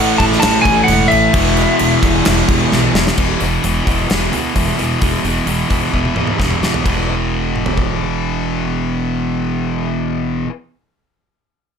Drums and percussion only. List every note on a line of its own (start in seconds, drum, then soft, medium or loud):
0.20 kick medium
0.20 crash medium
0.32 snare soft
0.42 snare loud
0.42 crash medium
0.65 kick medium
0.65 crash medium
0.88 crash medium
1.11 crash medium
1.34 kick loud
1.34 crash medium
1.57 crash medium
1.79 crash medium
2.03 kick medium
2.03 crash medium
2.25 snare loud
2.25 crash medium
2.48 kick medium
2.48 crash medium
2.72 snare medium
2.95 snare loud
3.07 snare medium
3.18 kick loud
3.18 crash medium
3.41 open hi-hat soft
3.64 open hi-hat medium
3.87 kick medium
3.87 open hi-hat soft
4.10 snare loud
4.10 open hi-hat medium
4.33 open hi-hat soft
4.56 kick medium
4.56 open hi-hat medium
4.79 open hi-hat soft
5.02 kick medium
5.02 open hi-hat medium
5.25 open hi-hat soft
5.47 open hi-hat medium
5.70 kick medium
5.70 open hi-hat soft
5.94 kick soft
6.05 high tom soft
6.16 mid tom medium
6.27 mid tom medium
6.40 kick medium
6.40 snare medium
6.51 mid tom medium
6.63 snare medium
6.74 floor tom medium
6.86 kick medium
6.86 crash medium
7.56 mid tom soft
7.66 floor tom medium
7.77 kick medium